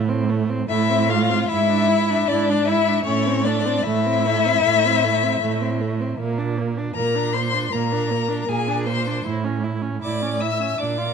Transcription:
Already playing: A2
0.08 C4
0.29 A3
0.49 C4
0.68 A2 A3 E4 E5
0.90 C4
1.09 A3 F4 F5
1.29 C4
1.49 G#2 E4 E5
1.70 D4
1.88 E4
2.09 D4
2.28 G#2 D4 E4 D5
2.50 D4
2.66 E4 E5
2.88 D4
3.04 A2 A3 C#4 C#5
3.26 C4
3.45 A3 D4 D5
3.66 C4
3.83 A2 A3 E4 E5
4.06 C4
4.25 A3
4.45 C4
4.63 A2 A3
4.85 C4
5.04 A3
5.23 C4
5.41 A2 A3
5.61 C4
5.81 A3
6.00 C4
6.18 A#2 A#3
6.38 D4
6.58 A#3
6.77 D4
6.95 A#2 A#3 A#4 A#5
7.15 D4
7.34 A#3 C5 C6
7.54 D4
7.73 A#2 A#3 A#4 A#5
7.92 D4
8.11 A#3
8.28 D4
8.42 A#5
8.48 A#2 A#3 G#4 G#5
8.68 D4
8.86 A#3 C5 C6
9.07 D4
9.25 A2 E4
9.44 C#4
9.63 E4
9.82 C#4
10.02 A2 E4 D5 D6
10.22 C#4
10.41 E4 E5 E6
10.60 C#4
10.78 A#2 D4 D5 D6
10.97 F4

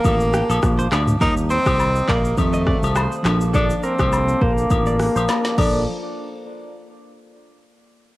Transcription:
Already playing: D3 F3 A#3 F4 A4 F5 A5 D6
0.04 A1 A4, kick, high agogo, shaker
0.20 shaker
0.34 G4, cross-stick, shaker
0.50 A#1 A4, high agogo, shaker
0.63 A#1, kick, cross-stick, shaker
0.79 C5, shaker
0.92 D2 D5, cross-stick, clap, high agogo, shaker
1.07 mid tom, shaker
1.18 D#2 D#3 G3 A#3 D#4 G4 A#4 D#5 A#5 D#6, kick, high agogo, shaker
1.24 F4
1.30 G4
1.37 shaker
1.50 C4 C5, shaker
1.66 C2, kick, cross-stick, high agogo, shaker
1.79 low woodblock, shaker
1.95 shaker
2.08 A#1 A#3 D5, kick, clap
2.25 shaker
2.37 F2 D#3 A3 C4 F4 C5 F5 A5, kick, high agogo, shaker
2.53 D#5, shaker
2.67 D5, kick, cross-stick
2.83 C2, high agogo, shaker
2.96 C5, cross-stick, low woodblock, shaker
3.12 shaker
3.23 A#1 F3 A#3 D4 D6, cross-stick, clap, high agogo, shaker
3.28 A4
3.41 shaker
3.54 D4 A4, kick, high agogo, shaker
3.70 shaker
3.78 D4
3.83 C4 A#4, shaker
3.99 C2, kick, cross-stick, high agogo, shaker
4.12 low woodblock, shaker
4.28 shaker
4.42 A#1 A#3 C5, kick
4.58 shaker
4.70 A1, kick, high agogo, shaker
4.86 D5, shaker
5.00 cross-stick, open hi-hat
5.16 A#1 C5, high agogo, shaker
5.29 A#4, snare, low woodblock, shaker
5.45 snare, shaker
5.58 A#1 F3 A#3 D4 F4 A4 A#4 C5 D5, kick, crash, high agogo

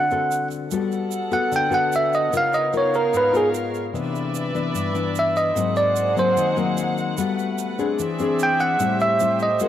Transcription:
Already playing: D3 F#5
0.11 C4 F#4 A4, shaker
0.31 shaker
0.51 shaker
0.71 G3 B3 F#4 A4 F#5, shaker
0.92 shaker
1.11 shaker
1.31 B3 F#4 A4 F#5, shaker
1.51 D3, shaker
1.56 G5
1.70 B3 F#4 A4 F#5, shaker
1.92 E5, shaker
2.13 D#5, shaker
2.33 C#3 B3 D#4 F4 A#4 C#5 F5, shaker
2.37 F5
2.53 D#5, shaker
2.73 B3 F4 A#4, shaker
2.77 C#5
2.94 A#4, shaker
3.13 G#2, shaker
3.17 B4
3.33 B3 F4 G#4 A#4, shaker
3.54 shaker
3.74 shaker
3.93 C3 E3 B3 D4 B4 D5 E5, shaker
4.15 shaker
4.35 shaker
4.54 E3 B3 D4, shaker
4.74 G2, shaker
4.94 E3 B3 D4, shaker
5.16 E5, shaker
5.36 D#5, shaker
5.55 G#2 F#3 A#3 C4 G#4 C5 F#5, shaker
5.76 D5, shaker
5.96 shaker
6.16 F#3 A#3 C4 C5, shaker
6.37 D#3, shaker
6.56 F#3 A#3 C4, shaker
6.77 shaker
6.98 shaker
7.17 G3 A3 B3 F#4 A4 B4, shaker
7.39 shaker
7.58 shaker
7.78 C4 D4 G#4, shaker
7.99 E3 C4 G#4 D5 E5, shaker
8.19 C4 D4 G#4, shaker
8.39 G5, shaker
8.60 F#5, shaker
8.79 A2 G3 A3 C4 E4 G4 C5, shaker
9.00 E5, shaker
9.20 G3 C4 E4, shaker
9.39 D#5, shaker
9.60 G#3 A#3 C4 F#4 G#4 A#4 F#5, shaker

